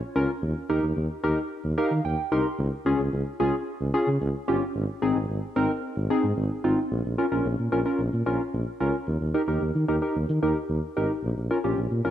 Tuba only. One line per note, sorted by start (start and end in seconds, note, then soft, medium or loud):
0.16 0.26 C#2 medium
0.43 0.53 D#2 loud
0.70 0.80 D#2 loud
0.83 0.94 D#2 loud
0.97 1.07 D#2 loud
1.24 1.34 D#2 medium
1.64 1.75 D#2 loud
1.91 2.02 D#3 medium
2.05 2.15 D#2 medium
2.32 2.42 C2 medium
2.59 2.69 C#2 loud
2.86 2.97 C#2 medium
2.99 3.10 C#2 medium
3.13 3.24 C#2 medium
3.40 3.51 C#2 medium
3.80 3.91 C#2 medium
4.08 4.18 C#3 loud
4.21 4.32 C#2 loud
4.48 4.59 G1 medium
4.75 4.86 G#1 loud
5.02 5.13 G#1 loud
5.16 5.26 G#1 medium
5.29 5.40 G#1 loud
5.56 5.67 G#1 medium
5.97 6.07 G#1 loud
6.24 6.34 G#2 medium
6.37 6.48 G#1 loud
6.64 6.75 G#1 medium
6.91 7.02 A#1 loud
7.05 7.15 A#1 medium
7.32 7.42 A#1 medium
7.45 7.56 A#1 loud
7.59 7.70 A#2 medium
7.72 7.83 A#1 medium
7.99 8.10 A#1 medium
8.13 8.24 A#2 medium
8.26 8.37 A#1 loud
8.53 8.64 A#1 loud
8.81 8.91 C#2 loud
9.08 9.18 D#2 loud
9.21 9.32 D#2 medium
9.48 9.59 D#2 loud
9.62 9.72 D#2 medium
9.75 9.86 D#3 medium
9.89 9.99 D#2 medium
10.16 10.26 D#2 loud
10.29 10.40 D#3 loud
10.43 10.53 D#2 loud
10.70 10.80 D#2 loud
10.97 11.07 G#1 medium
11.24 11.34 A#1 loud
11.37 11.48 A#1 medium
11.64 11.75 A#1 medium
11.78 11.88 A#1 medium
11.91 12.02 A#2 medium
12.05 12.11 A#1 medium